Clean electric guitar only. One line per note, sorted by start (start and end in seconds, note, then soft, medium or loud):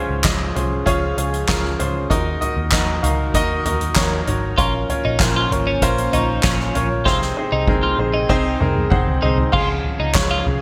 4.58 4.73 F4 medium
5.05 5.20 D#4 medium
5.36 5.51 F4 medium
5.67 5.81 C#4 medium
6.13 6.43 D#4 medium
6.44 6.88 C#4 medium
7.05 7.20 F4 medium
7.52 7.67 D#4 medium
7.83 7.98 F4 medium
8.14 8.57 D#4 medium
9.22 9.37 D#4 medium
9.53 9.68 F4 medium
10.00 10.14 D#4 medium
10.31 10.45 F4 medium